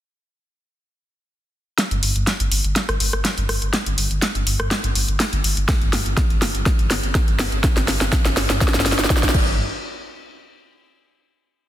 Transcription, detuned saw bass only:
1.91 1.99 G1 medium
2.03 2.11 G1 medium
2.16 2.23 G1 medium
2.40 2.48 G1 medium
2.52 2.60 G1 loud
2.64 2.72 G1 medium
2.89 2.97 G1 medium
3.00 3.09 G1 loud
3.13 3.21 G1 medium
3.38 3.45 G1 medium
3.49 3.58 G1 loud
3.62 3.70 G1 medium
3.86 3.94 G1 medium
3.98 4.07 G1 medium
4.11 4.19 G1 medium
4.35 4.43 G1 medium
4.47 4.55 G1 loud
4.60 4.67 G1 medium
4.84 4.92 G1 medium
4.95 5.04 G1 loud
5.08 5.16 G1 medium
5.33 5.41 G1 medium
5.44 5.53 G1 loud
5.57 5.65 G1 medium
5.82 5.89 G1 medium
5.93 6.02 G1 medium
6.06 6.14 G1 medium
6.30 6.38 G1 medium
6.42 6.51 G1 loud
6.55 6.62 G1 loud
6.79 6.87 G1 medium
6.91 6.99 G1 loud
7.04 7.11 G1 medium
7.28 7.36 G1 medium
7.39 7.48 G1 loud
7.52 7.60 G1 loud
7.77 7.84 G1 medium
7.88 7.97 G1 medium
8.01 8.09 G1 medium
8.25 8.33 G1 medium
8.37 8.46 G1 loud
8.50 8.58 G1 loud
8.74 8.82 G1 medium
8.86 8.94 G1 loud
8.99 9.06 G1 medium
9.23 9.31 G1 medium
9.34 9.57 G1 loud

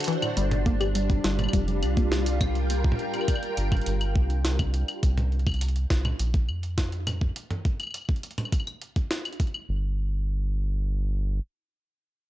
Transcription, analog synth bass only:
0.37 1.20 G1 loud
1.24 1.48 G1 medium
1.53 1.84 F1 medium
1.83 2.95 C2 medium
3.57 3.81 G1 medium
3.86 4.17 G1 loud
4.16 4.84 C2 loud
5.03 5.86 C2 loud
5.90 6.14 C2 medium
6.19 6.50 A#1 medium
6.49 7.32 F2 medium
9.69 11.40 G1 medium

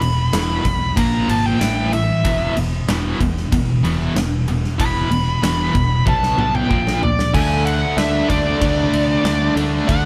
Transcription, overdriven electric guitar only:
0.01 0.30 E2 medium
0.01 0.30 B2 medium
0.33 0.63 E2 medium
0.33 0.63 B2 loud
0.33 0.63 E3 loud
0.65 0.93 E2 medium
0.65 0.93 B2 medium
0.97 1.27 A#2 loud
0.97 1.27 F3 loud
0.97 1.27 A#3 loud
1.28 1.58 A#2 loud
1.28 1.59 F3 loud
1.28 1.59 A#3 loud
1.60 1.90 A2 medium
1.60 1.90 E3 medium
1.60 1.91 A3 loud
1.92 2.21 A2 medium
1.92 2.21 E3 medium
2.24 2.54 E2 loud
2.24 2.54 B2 loud
2.24 2.55 E3 loud
2.56 2.85 E2 medium
2.56 2.85 B2 medium
2.88 3.18 E2 loud
2.88 3.18 B2 loud
2.88 3.18 E3 loud
3.21 3.49 E2 medium
3.21 3.49 B2 medium
3.52 3.80 E2 medium
3.52 3.81 B2 medium
3.83 4.13 E2 loud
3.83 4.14 B2 loud
3.83 4.14 E3 loud
4.15 4.44 E2 medium
4.15 4.44 B2 medium
4.48 4.76 E2 medium
4.48 4.76 B2 medium
4.78 5.09 E2 medium
4.78 5.09 B2 loud
4.78 5.09 E3 loud
5.11 5.39 E2 medium
5.11 5.40 B2 medium
5.43 5.73 E2 medium
5.43 5.73 B2 medium
5.43 5.73 E3 loud
5.74 6.03 E2 medium
5.74 6.03 B2 medium
6.06 6.36 B2 loud
6.06 6.36 F#3 loud
6.06 6.36 B3 loud
6.37 6.68 B2 loud
6.37 6.68 F#3 loud
6.37 6.68 B3 loud
6.70 7.00 A#2 loud
6.70 7.00 F3 loud
6.70 7.00 A#3 loud
7.02 7.30 A#2 medium
7.02 7.31 F3 medium
7.34 7.97 D3 medium
7.34 7.97 A3 loud
7.34 7.98 D4 loud
7.98 8.29 D3 medium
7.98 8.30 A3 medium
7.98 8.30 D4 medium
8.29 8.60 D3 medium
8.29 8.60 A3 medium
8.29 8.60 D4 medium
8.61 9.23 D3 loud
8.61 9.23 A3 loud
8.61 9.24 D4 loud
9.24 9.55 D3 medium
9.24 9.55 A3 medium
9.24 9.56 D4 medium
9.56 9.87 D3 medium
9.56 9.87 A3 medium
9.56 9.87 D4 loud
9.88 10.05 D3 loud
9.88 10.05 A3 loud
9.88 10.05 D4 loud

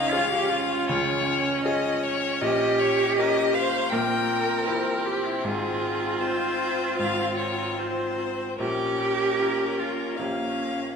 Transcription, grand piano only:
0.00 0.84 C#2 medium
0.00 0.84 C#3 medium
0.11 0.84 C#4 medium
0.11 0.84 F4 soft
0.11 0.85 G#4 medium
0.89 2.38 C#2 medium
0.89 2.38 C#3 medium
1.65 2.38 C#4 medium
1.65 2.38 F4 medium
1.65 2.38 G#4 medium
2.41 3.88 A#1 medium
2.41 3.88 A#2 medium
3.18 3.88 C#4 medium
3.18 3.88 G4 medium
3.18 3.88 A#4 medium
3.92 5.41 A#1 medium
3.92 5.41 A#2 medium
4.67 5.41 C4 medium
4.67 5.41 E4 medium
4.67 5.41 C5 medium
5.44 6.95 G#1 medium
5.44 6.95 G#2 medium
6.22 6.95 C4 soft
6.22 6.95 F4 medium
6.22 6.96 C5 medium
6.99 8.56 G#1 medium
6.99 8.56 G#2 medium
7.79 8.56 C4 soft
7.79 8.56 F4 soft
7.79 8.56 C5 soft
8.60 10.14 A#1 medium
8.60 10.14 A#2 medium
9.39 10.15 C#4 soft
9.39 10.15 F4 soft
9.39 10.15 A#4 soft
10.18 10.96 A#1 medium
10.18 10.96 A#2 soft
10.18 10.96 C#4 soft
10.18 10.96 G4 soft
10.18 10.96 A#4 soft

